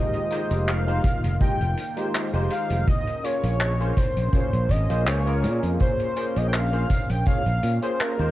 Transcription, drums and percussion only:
0.13 closed hi-hat soft
0.31 closed hi-hat loud
0.31 tambourine medium
0.51 closed hi-hat medium
0.51 tambourine soft
0.68 clap loud
0.68 closed hi-hat medium
0.68 tambourine soft
0.88 closed hi-hat soft
1.04 kick loud
1.04 closed hi-hat loud
1.04 tambourine medium
1.24 closed hi-hat medium
1.24 tambourine soft
1.41 kick loud
1.41 closed hi-hat medium
1.41 tambourine soft
1.61 closed hi-hat soft
1.77 closed hi-hat medium
1.77 tambourine medium
1.97 closed hi-hat medium
1.97 tambourine soft
2.14 clap loud
2.14 closed hi-hat medium
2.14 tambourine soft
2.34 closed hi-hat soft
2.50 closed hi-hat medium
2.50 tambourine medium
2.70 closed hi-hat medium
2.70 tambourine soft
2.88 kick loud
2.88 closed hi-hat medium
2.88 tambourine soft
3.07 closed hi-hat soft
3.24 closed hi-hat loud
3.24 tambourine medium
3.44 closed hi-hat medium
3.44 tambourine soft
3.60 clap loud
3.60 closed hi-hat medium
3.60 tambourine soft
3.80 closed hi-hat soft
3.97 kick loud
3.97 closed hi-hat loud
3.97 tambourine medium
4.17 closed hi-hat medium
4.17 tambourine soft
4.33 kick loud
4.33 closed hi-hat medium
4.33 tambourine soft
4.53 closed hi-hat soft
4.69 kick medium
4.69 closed hi-hat medium
4.69 tambourine medium
4.90 closed hi-hat medium
4.90 tambourine soft
5.07 clap loud
5.07 closed hi-hat medium
5.07 tambourine soft
5.27 closed hi-hat soft
5.44 closed hi-hat medium
5.44 tambourine medium
5.63 closed hi-hat medium
5.63 tambourine soft
5.80 kick loud
5.80 closed hi-hat medium
5.80 tambourine soft
6.00 closed hi-hat soft
6.17 closed hi-hat medium
6.17 tambourine medium
6.36 closed hi-hat medium
6.36 tambourine soft
6.53 clap loud
6.53 closed hi-hat medium
6.53 tambourine soft
6.73 closed hi-hat soft
6.90 kick medium
6.90 closed hi-hat medium
6.90 tambourine medium
7.09 closed hi-hat medium
7.09 tambourine soft
7.26 kick loud
7.26 closed hi-hat medium
7.26 tambourine soft
7.46 closed hi-hat soft
7.63 closed hi-hat medium
7.63 tambourine medium
7.82 closed hi-hat medium
7.82 tambourine soft
8.00 clap loud
8.00 closed hi-hat medium
8.00 tambourine soft
8.19 closed hi-hat soft

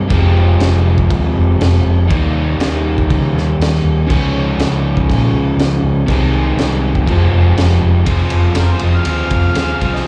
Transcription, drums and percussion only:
0.10 kick loud
0.10 crash medium
0.60 snare loud
0.60 crash medium
0.98 kick medium
1.10 kick medium
1.10 crash medium
1.61 snare loud
1.61 crash medium
1.74 snare soft
2.11 kick loud
2.11 crash medium
2.60 snare loud
2.60 crash medium
2.98 kick medium
3.10 kick medium
3.10 crash medium
3.38 snare soft
3.61 snare loud
3.61 crash medium
3.75 snare soft
4.10 kick loud
4.10 crash medium
4.59 snare loud
4.59 crash medium
4.97 kick medium
5.10 kick medium
5.10 crash medium
5.59 snare loud
5.59 crash medium
6.08 kick loud
6.08 crash medium
6.58 snare loud
6.58 crash medium
6.95 kick medium
7.07 kick loud
7.07 crash medium
7.57 snare loud
7.57 crash medium
7.71 snare soft
8.06 kick loud
8.06 ride loud
8.30 ride medium
8.55 snare loud
8.55 ride loud
8.79 ride medium
9.05 ride medium
9.30 kick medium
9.30 ride medium
9.55 snare loud
9.55 ride medium
9.81 kick medium
9.81 ride medium
9.95 snare soft

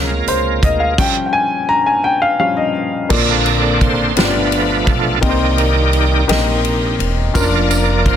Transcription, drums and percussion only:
0.28 closed hi-hat soft
0.63 kick medium
0.63 closed hi-hat soft
0.98 kick loud
0.98 crash medium
3.10 kick loud
3.10 crash loud
3.46 ride soft
3.81 kick medium
3.81 ride soft
4.17 snare loud
4.17 ride medium
4.52 ride soft
4.87 kick medium
4.87 ride soft
5.23 kick loud
5.23 ride medium
5.58 ride soft
5.93 ride soft
6.29 snare loud
6.29 ride medium
6.65 ride soft
7.00 ride soft
7.35 kick loud
7.35 ride medium
7.35 tambourine medium
7.71 ride soft
7.71 tambourine medium
8.06 kick medium
8.06 ride soft

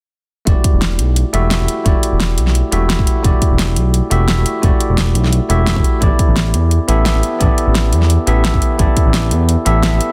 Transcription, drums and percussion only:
0.47 kick loud
0.47 closed hi-hat medium
0.64 kick loud
0.64 closed hi-hat medium
0.82 snare loud
0.82 closed hi-hat medium
0.99 closed hi-hat medium
1.16 closed hi-hat medium
1.34 closed hi-hat medium
1.51 snare loud
1.51 closed hi-hat medium
1.68 closed hi-hat medium
1.86 kick loud
1.86 closed hi-hat medium
2.03 closed hi-hat medium
2.20 snare loud
2.20 closed hi-hat medium
2.38 closed hi-hat medium
2.47 snare soft
2.55 closed hi-hat medium
2.72 closed hi-hat medium
2.90 snare loud
2.90 closed hi-hat medium
2.99 kick loud
3.07 closed hi-hat medium
3.24 kick loud
3.24 closed hi-hat medium
3.42 kick loud
3.42 closed hi-hat medium
3.59 snare loud
3.59 closed hi-hat medium
3.76 closed hi-hat medium
3.94 closed hi-hat medium
4.11 closed hi-hat medium
4.28 snare loud
4.28 closed hi-hat medium
4.46 closed hi-hat medium
4.63 kick loud
4.63 closed hi-hat medium
4.80 closed hi-hat medium
4.98 snare loud
4.98 closed hi-hat medium
5.15 closed hi-hat medium
5.24 snare soft
5.33 closed hi-hat medium
5.50 closed hi-hat medium
5.67 snare loud
5.67 closed hi-hat medium
5.76 kick loud
5.84 closed hi-hat medium
6.02 kick loud
6.02 closed hi-hat medium
6.19 kick loud
6.19 closed hi-hat medium
6.36 snare loud
6.36 closed hi-hat medium
6.54 closed hi-hat medium
6.71 closed hi-hat medium
6.89 closed hi-hat medium
7.06 snare loud
7.06 closed hi-hat medium
7.23 closed hi-hat medium
7.41 kick loud
7.41 closed hi-hat medium
7.58 closed hi-hat medium
7.75 snare loud
7.75 closed hi-hat medium
7.93 closed hi-hat medium
8.02 snare soft
8.10 closed hi-hat medium
8.27 closed hi-hat medium
8.45 snare loud
8.45 closed hi-hat medium
8.54 kick loud
8.62 closed hi-hat medium
8.79 kick loud
8.79 closed hi-hat medium
8.97 kick medium
8.97 closed hi-hat medium
9.14 snare loud
9.14 closed hi-hat medium
9.31 closed hi-hat medium
9.49 closed hi-hat medium
9.66 closed hi-hat medium
9.83 snare loud
9.83 closed hi-hat medium
10.01 closed hi-hat medium

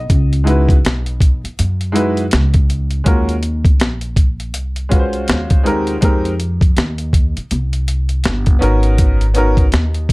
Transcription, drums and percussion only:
0.10 kick loud
0.10 closed hi-hat medium
0.33 closed hi-hat soft
0.47 closed hi-hat medium
0.69 kick medium
0.69 closed hi-hat soft
0.85 snare loud
0.85 closed hi-hat medium
1.06 closed hi-hat soft
1.21 kick medium
1.21 closed hi-hat medium
1.45 closed hi-hat medium
1.59 closed hi-hat medium
1.81 closed hi-hat soft
1.96 closed hi-hat medium
2.17 closed hi-hat soft
2.31 snare loud
2.31 closed hi-hat medium
2.54 kick medium
2.54 closed hi-hat medium
2.70 closed hi-hat medium
2.91 closed hi-hat soft
3.06 kick loud
3.06 closed hi-hat medium
3.29 closed hi-hat soft
3.43 closed hi-hat medium
3.65 kick loud
3.65 closed hi-hat soft
3.80 snare loud
3.80 closed hi-hat medium
4.01 closed hi-hat soft
4.16 kick medium
4.16 closed hi-hat medium
4.40 closed hi-hat soft
4.54 closed hi-hat medium
4.76 closed hi-hat soft
4.91 kick medium
4.91 closed hi-hat medium
5.13 closed hi-hat soft
5.28 snare loud
5.28 closed hi-hat medium
5.50 kick medium
5.50 closed hi-hat medium
5.66 closed hi-hat medium
5.87 closed hi-hat soft
6.02 kick loud
6.02 closed hi-hat medium
6.25 closed hi-hat soft
6.40 closed hi-hat medium
6.61 kick medium
6.61 closed hi-hat soft
6.77 snare loud
6.77 closed hi-hat medium
6.98 closed hi-hat soft
7.13 kick medium
7.13 closed hi-hat medium
7.37 closed hi-hat medium
7.51 closed hi-hat medium
7.73 closed hi-hat medium
7.88 closed hi-hat medium
8.09 closed hi-hat soft
8.24 snare loud
8.24 closed hi-hat medium
8.46 kick medium
8.46 closed hi-hat medium
8.62 closed hi-hat medium
8.83 closed hi-hat soft
8.98 kick loud
8.98 closed hi-hat medium
9.21 closed hi-hat medium
9.35 closed hi-hat medium
9.57 kick medium
9.57 closed hi-hat soft
9.72 snare loud
9.72 closed hi-hat medium
9.94 closed hi-hat soft
10.09 kick medium

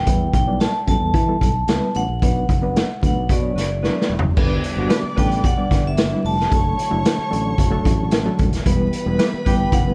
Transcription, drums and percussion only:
0.07 kick medium
0.07 closed hi-hat medium
0.34 kick medium
0.34 closed hi-hat medium
0.61 snare loud
0.61 closed hi-hat medium
0.88 kick medium
0.88 closed hi-hat medium
1.14 kick medium
1.14 closed hi-hat medium
1.41 kick medium
1.41 closed hi-hat medium
1.68 snare loud
1.68 closed hi-hat medium
1.95 closed hi-hat medium
2.22 kick medium
2.22 closed hi-hat medium
2.49 kick medium
2.49 closed hi-hat medium
2.76 snare loud
2.76 closed hi-hat medium
3.03 kick medium
3.03 closed hi-hat medium
3.29 kick medium
3.29 closed hi-hat medium
3.58 snare soft
3.58 closed hi-hat medium
3.84 snare soft
4.02 snare medium
4.19 floor tom medium
4.37 kick loud
4.37 crash medium
4.64 closed hi-hat medium
4.90 snare loud
4.90 closed hi-hat medium
5.18 kick medium
5.18 closed hi-hat medium
5.31 closed hi-hat soft
5.44 kick loud
5.44 closed hi-hat medium
5.71 kick medium
5.71 snare soft
5.71 closed hi-hat medium
5.97 snare loud
5.97 closed hi-hat medium
6.25 open hi-hat soft
6.40 snare soft
6.52 kick loud
6.52 closed hi-hat medium
6.79 closed hi-hat medium
7.05 snare loud
7.05 closed hi-hat loud
7.33 closed hi-hat medium
7.58 kick medium
7.58 closed hi-hat medium
7.85 kick medium
7.85 closed hi-hat medium
8.11 snare loud
8.11 closed hi-hat medium
8.39 kick medium
8.39 closed hi-hat medium
8.53 snare soft
8.53 closed hi-hat medium
8.66 kick loud
8.66 closed hi-hat loud
8.93 closed hi-hat medium
9.19 snare loud
9.19 closed hi-hat medium
9.46 kick medium
9.46 closed hi-hat medium
9.72 kick medium
9.72 closed hi-hat medium

